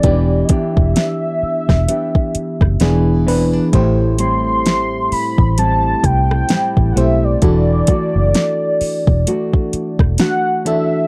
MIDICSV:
0, 0, Header, 1, 7, 480
1, 0, Start_track
1, 0, Tempo, 923077
1, 20, Time_signature, 4, 2, 24, 8
1, 5758, End_track
2, 0, Start_track
2, 0, Title_t, "Soft synth lead"
2, 0, Program_c, 0, 80
2, 0, Note_on_c, 0, 74, 104
2, 235, Note_on_c, 0, 75, 65
2, 243, Note_off_c, 0, 74, 0
2, 266, Note_on_c, 0, 76, 103
2, 273, Note_off_c, 0, 75, 0
2, 1703, Note_off_c, 0, 76, 0
2, 2182, Note_on_c, 0, 84, 127
2, 2665, Note_on_c, 0, 83, 113
2, 2672, Note_off_c, 0, 84, 0
2, 2902, Note_off_c, 0, 83, 0
2, 2905, Note_on_c, 0, 81, 108
2, 3145, Note_on_c, 0, 79, 111
2, 3153, Note_off_c, 0, 81, 0
2, 3599, Note_on_c, 0, 78, 69
2, 3606, Note_off_c, 0, 79, 0
2, 3625, Note_on_c, 0, 76, 98
2, 3633, Note_off_c, 0, 78, 0
2, 3765, Note_on_c, 0, 74, 112
2, 3773, Note_off_c, 0, 76, 0
2, 5202, Note_off_c, 0, 74, 0
2, 5305, Note_on_c, 0, 78, 99
2, 5526, Note_off_c, 0, 78, 0
2, 5547, Note_on_c, 0, 76, 93
2, 5758, Note_off_c, 0, 76, 0
2, 5758, End_track
3, 0, Start_track
3, 0, Title_t, "FM electric piano"
3, 0, Program_c, 1, 5
3, 0, Control_c, 1, 64, 127
3, 19, Note_on_c, 1, 52, 79
3, 22, Note_on_c, 1, 59, 69
3, 24, Note_on_c, 1, 62, 73
3, 25, Control_c, 1, 64, 0
3, 27, Note_on_c, 1, 67, 86
3, 119, Control_c, 1, 64, 127
3, 890, Note_off_c, 1, 52, 0
3, 891, Note_off_c, 1, 59, 0
3, 893, Note_off_c, 1, 62, 0
3, 894, Note_off_c, 1, 67, 0
3, 1460, Note_on_c, 1, 52, 94
3, 1461, Note_on_c, 1, 59, 90
3, 1465, Note_on_c, 1, 62, 89
3, 1466, Control_c, 1, 64, 0
3, 1467, Note_on_c, 1, 68, 102
3, 1561, Control_c, 1, 64, 127
3, 1677, Note_off_c, 1, 52, 0
3, 1678, Note_off_c, 1, 59, 0
3, 1680, Note_off_c, 1, 62, 0
3, 1681, Note_off_c, 1, 68, 0
3, 1699, Note_on_c, 1, 52, 92
3, 1702, Note_on_c, 1, 59, 83
3, 1704, Note_on_c, 1, 62, 85
3, 1707, Note_on_c, 1, 71, 98
3, 1917, Note_off_c, 1, 52, 0
3, 1918, Note_off_c, 1, 59, 0
3, 1919, Note_off_c, 1, 62, 0
3, 1921, Note_off_c, 1, 71, 0
3, 1941, Note_on_c, 1, 57, 96
3, 1943, Note_on_c, 1, 64, 84
3, 1945, Control_c, 1, 64, 0
3, 1946, Note_on_c, 1, 67, 81
3, 1949, Note_on_c, 1, 72, 104
3, 2051, Control_c, 1, 64, 127
3, 2811, Note_off_c, 1, 57, 0
3, 2812, Note_off_c, 1, 64, 0
3, 2814, Note_off_c, 1, 67, 0
3, 2815, Note_off_c, 1, 72, 0
3, 3620, Note_on_c, 1, 57, 75
3, 3623, Note_on_c, 1, 64, 70
3, 3625, Note_on_c, 1, 67, 68
3, 3628, Note_on_c, 1, 72, 80
3, 3837, Note_off_c, 1, 57, 0
3, 3839, Note_off_c, 1, 64, 0
3, 3840, Note_off_c, 1, 67, 0
3, 3841, Note_off_c, 1, 72, 0
3, 3858, Note_on_c, 1, 52, 80
3, 3860, Note_on_c, 1, 62, 71
3, 3863, Note_on_c, 1, 66, 70
3, 3865, Note_on_c, 1, 69, 84
3, 3866, Control_c, 1, 64, 0
3, 3964, Control_c, 1, 64, 127
3, 4730, Note_off_c, 1, 52, 0
3, 4730, Note_off_c, 1, 62, 0
3, 4732, Note_off_c, 1, 66, 0
3, 4733, Note_off_c, 1, 69, 0
3, 5540, Note_on_c, 1, 52, 75
3, 5543, Note_on_c, 1, 62, 73
3, 5545, Note_on_c, 1, 66, 69
3, 5547, Note_on_c, 1, 69, 84
3, 5757, Note_off_c, 1, 52, 0
3, 5758, Note_off_c, 1, 62, 0
3, 5758, Note_off_c, 1, 66, 0
3, 5758, Note_off_c, 1, 69, 0
3, 5758, End_track
4, 0, Start_track
4, 0, Title_t, "Nylon-string guitar"
4, 0, Program_c, 2, 24
4, 0, Note_on_c, 2, 63, 60
4, 18, Note_on_c, 2, 52, 88
4, 22, Note_on_c, 2, 67, 72
4, 75, Note_off_c, 2, 63, 0
4, 258, Note_off_c, 2, 67, 0
4, 258, Note_on_c, 2, 59, 65
4, 261, Note_on_c, 2, 62, 63
4, 264, Note_on_c, 2, 67, 69
4, 972, Note_off_c, 2, 59, 0
4, 976, Note_off_c, 2, 62, 0
4, 979, Note_off_c, 2, 67, 0
4, 979, Note_on_c, 2, 59, 63
4, 982, Note_on_c, 2, 62, 63
4, 985, Note_on_c, 2, 67, 72
4, 1456, Note_off_c, 2, 52, 0
4, 1459, Note_on_c, 2, 52, 85
4, 1515, Note_off_c, 2, 59, 0
4, 1516, Note_off_c, 2, 62, 0
4, 1518, Note_off_c, 2, 67, 0
4, 1698, Note_on_c, 2, 60, 62
4, 1837, Note_off_c, 2, 60, 0
4, 1837, Note_on_c, 2, 62, 52
4, 1937, Note_on_c, 2, 45, 83
4, 1939, Note_off_c, 2, 62, 0
4, 1941, Note_on_c, 2, 64, 72
4, 2175, Note_off_c, 2, 52, 0
4, 2178, Note_on_c, 2, 55, 66
4, 2181, Note_on_c, 2, 60, 66
4, 2182, Note_off_c, 2, 64, 0
4, 2184, Note_on_c, 2, 64, 69
4, 2892, Note_off_c, 2, 55, 0
4, 2896, Note_off_c, 2, 60, 0
4, 2899, Note_on_c, 2, 55, 61
4, 2902, Note_on_c, 2, 60, 64
4, 2903, Note_off_c, 2, 64, 0
4, 2905, Note_on_c, 2, 64, 68
4, 3374, Note_off_c, 2, 55, 0
4, 3376, Note_off_c, 2, 60, 0
4, 3380, Note_on_c, 2, 55, 61
4, 3382, Note_on_c, 2, 60, 65
4, 3383, Note_off_c, 2, 64, 0
4, 3385, Note_on_c, 2, 64, 67
4, 3615, Note_off_c, 2, 60, 0
4, 3621, Note_on_c, 2, 60, 64
4, 3858, Note_off_c, 2, 55, 0
4, 3859, Note_off_c, 2, 45, 0
4, 3860, Note_on_c, 2, 52, 87
4, 3864, Note_on_c, 2, 66, 74
4, 3916, Note_off_c, 2, 60, 0
4, 4100, Note_on_c, 2, 57, 65
4, 4101, Note_off_c, 2, 64, 0
4, 4103, Note_on_c, 2, 62, 64
4, 4104, Note_off_c, 2, 66, 0
4, 4106, Note_on_c, 2, 66, 72
4, 4817, Note_off_c, 2, 57, 0
4, 4819, Note_on_c, 2, 57, 66
4, 4820, Note_off_c, 2, 62, 0
4, 4822, Note_on_c, 2, 62, 67
4, 4823, Note_off_c, 2, 66, 0
4, 4825, Note_on_c, 2, 66, 71
4, 5297, Note_off_c, 2, 57, 0
4, 5299, Note_on_c, 2, 57, 68
4, 5300, Note_off_c, 2, 62, 0
4, 5302, Note_on_c, 2, 62, 65
4, 5304, Note_off_c, 2, 66, 0
4, 5306, Note_on_c, 2, 66, 73
4, 5536, Note_off_c, 2, 62, 0
4, 5538, Note_on_c, 2, 62, 61
4, 5758, Note_off_c, 2, 52, 0
4, 5758, Note_off_c, 2, 57, 0
4, 5758, Note_off_c, 2, 62, 0
4, 5758, Note_off_c, 2, 66, 0
4, 5758, End_track
5, 0, Start_track
5, 0, Title_t, "Fingered electric bass"
5, 0, Program_c, 3, 33
5, 22, Note_on_c, 3, 28, 105
5, 224, Note_off_c, 3, 28, 0
5, 401, Note_on_c, 3, 28, 90
5, 485, Note_off_c, 3, 28, 0
5, 880, Note_on_c, 3, 28, 86
5, 965, Note_off_c, 3, 28, 0
5, 1358, Note_on_c, 3, 30, 90
5, 1443, Note_off_c, 3, 30, 0
5, 1462, Note_on_c, 3, 28, 105
5, 1867, Note_off_c, 3, 28, 0
5, 1941, Note_on_c, 3, 33, 101
5, 2640, Note_off_c, 3, 33, 0
5, 2800, Note_on_c, 3, 33, 96
5, 3088, Note_off_c, 3, 33, 0
5, 3140, Note_on_c, 3, 36, 91
5, 3343, Note_off_c, 3, 36, 0
5, 3521, Note_on_c, 3, 33, 84
5, 3605, Note_off_c, 3, 33, 0
5, 3623, Note_on_c, 3, 35, 92
5, 3824, Note_off_c, 3, 35, 0
5, 3861, Note_on_c, 3, 28, 111
5, 4063, Note_off_c, 3, 28, 0
5, 4241, Note_on_c, 3, 30, 97
5, 4325, Note_off_c, 3, 30, 0
5, 4720, Note_on_c, 3, 28, 93
5, 4805, Note_off_c, 3, 28, 0
5, 5198, Note_on_c, 3, 28, 83
5, 5283, Note_off_c, 3, 28, 0
5, 5758, End_track
6, 0, Start_track
6, 0, Title_t, "Muted fingered electric bass strokes"
6, 743, Note_on_c, 9, 29, 50
6, 795, Note_off_c, 9, 29, 0
6, 1223, Note_on_c, 9, 29, 48
6, 1275, Note_off_c, 9, 29, 0
6, 2664, Note_on_c, 9, 29, 48
6, 2716, Note_off_c, 9, 29, 0
6, 4582, Note_on_c, 9, 29, 50
6, 4634, Note_off_c, 9, 29, 0
6, 5062, Note_on_c, 9, 29, 48
6, 5114, Note_off_c, 9, 29, 0
6, 5758, End_track
7, 0, Start_track
7, 0, Title_t, "Drums"
7, 17, Note_on_c, 9, 42, 58
7, 19, Note_on_c, 9, 36, 111
7, 69, Note_off_c, 9, 42, 0
7, 71, Note_off_c, 9, 36, 0
7, 254, Note_on_c, 9, 42, 89
7, 258, Note_on_c, 9, 36, 109
7, 306, Note_off_c, 9, 42, 0
7, 310, Note_off_c, 9, 36, 0
7, 400, Note_on_c, 9, 36, 95
7, 452, Note_off_c, 9, 36, 0
7, 498, Note_on_c, 9, 42, 68
7, 503, Note_on_c, 9, 38, 102
7, 550, Note_off_c, 9, 42, 0
7, 555, Note_off_c, 9, 38, 0
7, 878, Note_on_c, 9, 36, 90
7, 882, Note_on_c, 9, 37, 68
7, 882, Note_on_c, 9, 38, 68
7, 930, Note_off_c, 9, 36, 0
7, 934, Note_off_c, 9, 37, 0
7, 934, Note_off_c, 9, 38, 0
7, 980, Note_on_c, 9, 42, 87
7, 1032, Note_off_c, 9, 42, 0
7, 1118, Note_on_c, 9, 36, 89
7, 1170, Note_off_c, 9, 36, 0
7, 1221, Note_on_c, 9, 42, 62
7, 1273, Note_off_c, 9, 42, 0
7, 1357, Note_on_c, 9, 36, 90
7, 1362, Note_on_c, 9, 37, 87
7, 1409, Note_off_c, 9, 36, 0
7, 1414, Note_off_c, 9, 37, 0
7, 1455, Note_on_c, 9, 42, 65
7, 1463, Note_on_c, 9, 38, 106
7, 1507, Note_off_c, 9, 42, 0
7, 1515, Note_off_c, 9, 38, 0
7, 1707, Note_on_c, 9, 46, 71
7, 1759, Note_off_c, 9, 46, 0
7, 1940, Note_on_c, 9, 36, 109
7, 1940, Note_on_c, 9, 42, 57
7, 1992, Note_off_c, 9, 36, 0
7, 1992, Note_off_c, 9, 42, 0
7, 2176, Note_on_c, 9, 42, 89
7, 2228, Note_off_c, 9, 42, 0
7, 2422, Note_on_c, 9, 42, 65
7, 2426, Note_on_c, 9, 38, 99
7, 2474, Note_off_c, 9, 42, 0
7, 2478, Note_off_c, 9, 38, 0
7, 2662, Note_on_c, 9, 46, 55
7, 2714, Note_off_c, 9, 46, 0
7, 2799, Note_on_c, 9, 36, 94
7, 2851, Note_off_c, 9, 36, 0
7, 2900, Note_on_c, 9, 42, 84
7, 2952, Note_off_c, 9, 42, 0
7, 3139, Note_on_c, 9, 36, 94
7, 3140, Note_on_c, 9, 42, 61
7, 3191, Note_off_c, 9, 36, 0
7, 3192, Note_off_c, 9, 42, 0
7, 3282, Note_on_c, 9, 37, 83
7, 3334, Note_off_c, 9, 37, 0
7, 3373, Note_on_c, 9, 42, 69
7, 3382, Note_on_c, 9, 38, 107
7, 3425, Note_off_c, 9, 42, 0
7, 3434, Note_off_c, 9, 38, 0
7, 3519, Note_on_c, 9, 36, 82
7, 3571, Note_off_c, 9, 36, 0
7, 3624, Note_on_c, 9, 42, 65
7, 3676, Note_off_c, 9, 42, 0
7, 3857, Note_on_c, 9, 42, 59
7, 3860, Note_on_c, 9, 36, 107
7, 3909, Note_off_c, 9, 42, 0
7, 3912, Note_off_c, 9, 36, 0
7, 4093, Note_on_c, 9, 42, 85
7, 4098, Note_on_c, 9, 36, 102
7, 4145, Note_off_c, 9, 42, 0
7, 4150, Note_off_c, 9, 36, 0
7, 4339, Note_on_c, 9, 42, 68
7, 4344, Note_on_c, 9, 38, 101
7, 4391, Note_off_c, 9, 42, 0
7, 4396, Note_off_c, 9, 38, 0
7, 4580, Note_on_c, 9, 46, 57
7, 4632, Note_off_c, 9, 46, 0
7, 4718, Note_on_c, 9, 36, 96
7, 4770, Note_off_c, 9, 36, 0
7, 4821, Note_on_c, 9, 42, 88
7, 4873, Note_off_c, 9, 42, 0
7, 4958, Note_on_c, 9, 36, 96
7, 5010, Note_off_c, 9, 36, 0
7, 5060, Note_on_c, 9, 42, 61
7, 5112, Note_off_c, 9, 42, 0
7, 5196, Note_on_c, 9, 36, 94
7, 5202, Note_on_c, 9, 37, 80
7, 5248, Note_off_c, 9, 36, 0
7, 5254, Note_off_c, 9, 37, 0
7, 5294, Note_on_c, 9, 42, 69
7, 5302, Note_on_c, 9, 38, 116
7, 5346, Note_off_c, 9, 42, 0
7, 5354, Note_off_c, 9, 38, 0
7, 5544, Note_on_c, 9, 42, 66
7, 5596, Note_off_c, 9, 42, 0
7, 5758, End_track
0, 0, End_of_file